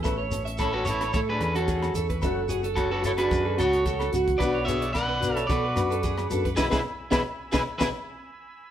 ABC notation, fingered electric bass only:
X:1
M:4/4
L:1/16
Q:"Swing 16ths" 1/4=110
K:A
V:1 name="Fingered electric bass" clef=bass
A,,,8 A,,2 E,,4 E,,2 | F,,,8 F,,2 C,,4 C,,2 | B,,,8 B,,2 F,,4 F,,2 | B,,, B,,, z2 B,,, z2 B,,, z B,,, z6 |]